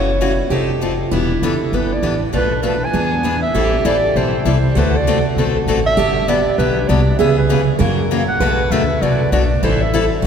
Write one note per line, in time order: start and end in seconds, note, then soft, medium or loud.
0.00 0.38 F#1 medium
0.00 0.47 E4 medium
0.00 0.39 C#5 medium
0.21 0.31 C#3 medium
0.21 0.31 E3 medium
0.21 0.32 A3 medium
0.21 0.32 C#4 medium
0.21 0.32 F#4 medium
0.50 0.99 F1 medium
0.50 0.70 F3 medium
0.50 0.70 C4 medium
0.50 0.71 D#4 medium
0.50 1.13 G4 medium
0.50 0.71 A4 medium
0.81 0.92 F3 medium
0.81 0.92 C4 medium
0.81 0.92 D#4 medium
0.81 0.92 A4 medium
1.11 1.36 E1 medium
1.11 1.31 E3 medium
1.11 1.31 B3 medium
1.11 1.32 D4 medium
1.11 2.29 E4 medium
1.11 1.32 G4 medium
1.42 1.68 F#1 medium
1.42 1.53 E3 medium
1.42 1.53 B3 medium
1.42 1.53 D4 medium
1.42 1.54 G4 medium
1.42 1.76 A4 medium
1.72 1.98 G1 medium
1.72 1.92 E3 medium
1.72 1.92 B3 medium
1.72 1.93 D4 medium
1.72 1.93 G4 medium
1.72 1.94 B4 medium
1.93 2.22 D5 medium
2.02 2.28 A1 medium
2.02 2.13 E3 medium
2.02 2.14 B3 medium
2.02 2.14 D4 medium
2.02 2.14 G4 medium
2.33 2.82 B1 medium
2.33 2.52 B2 medium
2.33 2.53 F3 medium
2.33 2.53 A3 medium
2.33 2.53 D4 medium
2.33 2.93 D4 medium
2.33 2.53 A4 medium
2.33 2.60 B4 medium
2.62 2.74 B2 medium
2.62 2.74 F3 medium
2.62 2.74 A3 medium
2.62 2.74 D4 medium
2.62 2.74 A4 medium
2.62 2.68 A#4 medium
2.66 2.86 B4 medium
2.85 3.42 G#5 medium
2.93 3.42 E2 medium
2.93 3.13 E3 medium
2.93 3.25 B3 medium
2.93 3.13 B3 medium
2.93 3.14 D4 medium
2.93 3.14 G#4 medium
3.23 3.35 E3 medium
3.23 3.35 B3 medium
3.23 3.35 D4 medium
3.23 3.52 E4 medium
3.23 3.35 G#4 medium
3.42 3.87 E5 loud
3.54 3.79 A1 medium
3.54 3.74 E3 medium
3.54 3.74 G3 medium
3.54 3.74 C4 medium
3.54 3.74 E4 medium
3.54 4.75 G4 medium
3.54 3.74 A4 medium
3.85 4.11 A1 medium
3.85 3.96 E3 medium
3.85 3.96 G3 medium
3.85 3.96 C4 medium
3.85 3.96 E4 medium
3.85 3.96 A4 medium
3.85 4.18 D5 medium
4.15 4.41 B1 medium
4.15 4.35 E3 medium
4.15 4.35 G3 medium
4.15 4.35 C4 medium
4.15 4.35 E4 medium
4.15 4.36 A4 medium
4.15 4.46 C5 medium
4.45 4.71 C2 medium
4.45 4.56 E3 medium
4.45 4.56 G3 medium
4.45 4.57 C4 medium
4.45 4.57 E4 medium
4.45 4.57 A4 medium
4.45 4.80 C5 medium
4.75 5.25 D2 medium
4.75 4.96 D3 medium
4.75 4.96 A3 medium
4.75 4.96 C4 medium
4.75 5.97 F#4 medium
4.75 4.96 F#4 medium
4.75 4.96 A4 medium
4.75 4.98 B4 medium
4.96 5.26 D5 medium
5.07 5.17 D3 medium
5.07 5.18 A3 medium
5.07 5.18 C4 medium
5.07 5.18 F#4 medium
5.07 5.18 A4 medium
5.36 5.62 B1 medium
5.36 5.57 D3 medium
5.36 5.57 A3 medium
5.36 5.57 C4 medium
5.36 5.57 F#4 medium
5.36 5.57 A4 medium
5.66 5.93 A1 medium
5.66 5.78 D3 medium
5.66 5.78 A3 medium
5.66 5.78 C4 medium
5.66 5.79 F#4 medium
5.66 5.79 A4 medium
5.86 6.30 E5 loud
5.97 6.46 G1 medium
5.97 6.17 D3 medium
5.97 6.17 F#3 medium
5.97 6.18 B3 medium
5.97 6.18 D4 medium
5.97 7.15 G4 medium
5.97 6.18 G4 medium
6.28 6.39 D3 medium
6.28 6.39 F#3 medium
6.28 6.39 B3 medium
6.28 6.39 D4 medium
6.28 6.39 G4 medium
6.28 6.57 D5 loud
6.58 6.84 B1 medium
6.58 6.78 D3 medium
6.58 6.78 F#3 medium
6.58 6.78 B3 medium
6.58 6.78 D4 medium
6.58 6.79 G4 medium
6.58 6.89 B4 medium
6.88 7.15 C2 medium
6.88 6.99 D3 medium
6.88 7.00 F#3 medium
6.88 7.00 B3 medium
6.88 7.00 D4 medium
6.88 7.00 G4 medium
6.88 7.18 D5 medium
7.19 7.68 C#2 medium
7.19 7.39 C#3 medium
7.19 7.39 E3 medium
7.19 7.39 B3 medium
7.19 7.39 C#4 medium
7.19 7.76 G#4 medium
7.19 7.39 G#4 medium
7.19 7.35 E5 medium
7.38 7.66 B4 medium
7.49 7.60 C#3 medium
7.49 7.60 E3 medium
7.49 7.60 B3 medium
7.49 7.60 C#4 medium
7.49 7.61 G#4 medium
7.79 8.28 F#2 medium
7.79 7.99 C#3 medium
7.79 7.99 E3 medium
7.79 7.99 A#3 medium
7.79 7.99 C#4 medium
7.79 7.99 F#4 medium
7.79 8.24 A#4 medium
8.11 8.21 C#3 medium
8.11 8.21 E3 medium
8.11 8.21 A#3 medium
8.11 8.22 C#4 medium
8.11 8.22 F#4 medium
8.28 8.73 F#5 medium
8.40 8.65 B1 medium
8.40 8.60 B2 medium
8.40 8.60 F#3 medium
8.40 8.60 A3 medium
8.40 8.61 D4 medium
8.40 8.61 F#4 medium
8.40 9.66 B4 medium
8.71 8.97 D2 medium
8.71 8.82 B2 medium
8.71 8.82 F#3 medium
8.71 8.82 A3 medium
8.71 8.82 D4 medium
8.71 8.82 F#4 medium
8.71 9.03 E5 loud
9.02 9.27 C2 medium
9.02 9.21 B2 medium
9.02 9.21 F#3 medium
9.02 9.21 A3 medium
9.02 9.22 D4 medium
9.02 9.22 F#4 medium
9.02 9.31 D5 medium
9.32 9.58 B1 medium
9.32 9.43 B2 medium
9.32 9.43 F#3 medium
9.32 9.43 A3 medium
9.32 9.43 D4 medium
9.32 9.43 F#4 medium
9.32 9.60 D5 medium
9.62 10.11 A1 medium
9.62 9.82 E3 medium
9.62 9.82 G3 medium
9.62 9.82 C4 medium
9.62 10.19 E4 medium
9.62 9.82 E4 medium
9.62 9.82 A4 medium
9.62 9.83 C5 medium
9.81 10.11 E5 medium
9.94 10.04 E3 medium
9.94 10.04 G3 medium
9.94 10.04 C4 medium
9.94 10.04 E4 medium
9.94 10.04 A4 medium
10.22 10.27 D2 medium
10.22 10.27 F#4 medium